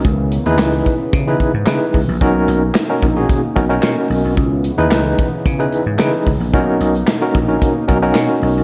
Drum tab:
HH |x-xxxxx-x-x-x-o-|x-x-x-x-x-x-x-o-|x-x-x-x-x-x-x-o-|x-xxxxx-x-x-x-o-|
CP |----x-------x---|----x-------x---|----x-------x---|----x-------x---|
SD |----o-------o---|----o-------o---|----o-------o---|----o-------o---|
BD |o-----o-o-o---o-|o-----o-o-o-----|o-----o-o-----o-|o-----o-o-o-----|